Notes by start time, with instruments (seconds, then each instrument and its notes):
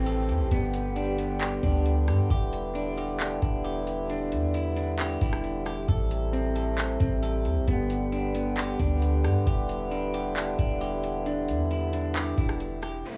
Already playing: 808-style bass A1, french horn section E3 A3 C4 G4, clean electric guitar C4, downlifter
0.06 clean electric guitar A4, closed hi-hat
0.29 808-style bass E2, closed hi-hat
0.40 808-style bass A1
0.51 808-style bass G1, french horn section D3 G3 B3, clean electric guitar B3, closed hi-hat
0.74 closed hi-hat
0.96 clean electric guitar D4, closed hi-hat
1.18 clean electric guitar B3, closed hi-hat
1.41 clean electric guitar G4, clap, closed hi-hat
1.63 808-style bass D2, clean electric guitar D4, kick, closed hi-hat
1.86 closed hi-hat
2.08 808-style bass G2, clean electric guitar G4, cross-stick, closed hi-hat
2.30 808-style bass E1, french horn section G3 E4, clean electric guitar G4, kick, closed hi-hat
2.53 closed hi-hat
2.75 clean electric guitar D4, closed hi-hat
2.97 clean electric guitar G4, closed hi-hat
3.20 clap, closed hi-hat
3.42 808-style bass E1, clean electric guitar D4, kick, closed hi-hat
3.64 clean electric guitar G4, closed hi-hat
3.87 closed hi-hat
4.09 clean electric guitar D4, closed hi-hat
4.32 808-style bass E2, closed hi-hat
4.54 clean electric guitar E4, closed hi-hat
4.76 clean electric guitar D4, closed hi-hat
4.99 clean electric guitar G4, clap, closed hi-hat
5.21 808-style bass E1, clean electric guitar E4, kick, closed hi-hat
5.33 cross-stick
5.44 closed hi-hat
5.66 clean electric guitar G4, cross-stick, closed hi-hat
5.88 808-style bass A1, french horn section C3 A3 E4, clean electric guitar A4, kick, closed hi-hat
6.11 closed hi-hat
6.33 clean electric guitar C4, closed hi-hat
6.56 clean electric guitar A4, closed hi-hat
6.78 clap, closed hi-hat
7.00 808-style bass A1, clean electric guitar C4, kick, closed hi-hat
7.23 clean electric guitar A4, closed hi-hat
7.45 808-style bass E2, closed hi-hat
7.56 808-style bass A1
7.68 808-style bass G1, french horn section D3 B3 G4, clean electric guitar B3, closed hi-hat
7.90 closed hi-hat
8.12 clean electric guitar D4, closed hi-hat
8.35 clean electric guitar B3, closed hi-hat
8.57 clean electric guitar G4, clap, closed hi-hat
8.79 808-style bass D2, clean electric guitar D4, kick, closed hi-hat
9.02 closed hi-hat
9.24 808-style bass G2, clean electric guitar G4, cross-stick, closed hi-hat
9.47 808-style bass E1, french horn section E4, clean electric guitar G4, kick, closed hi-hat
9.69 closed hi-hat
9.91 clean electric guitar D4, closed hi-hat
10.14 clean electric guitar G4, closed hi-hat
10.36 clap, closed hi-hat
10.59 808-style bass E1, clean electric guitar D4, kick, closed hi-hat
10.81 clean electric guitar G4, closed hi-hat
11.03 closed hi-hat
11.26 clean electric guitar D4, closed hi-hat
11.48 808-style bass E2, closed hi-hat
11.71 clean electric guitar E4, closed hi-hat
11.93 clean electric guitar D4, closed hi-hat
12.15 clean electric guitar G4, clap, closed hi-hat
12.38 808-style bass E1, clean electric guitar E4, kick, closed hi-hat
12.49 cross-stick
12.60 closed hi-hat
12.82 clean electric guitar G4, cross-stick, closed hi-hat
13.05 french horn section C3 G3 A3 E4, downlifter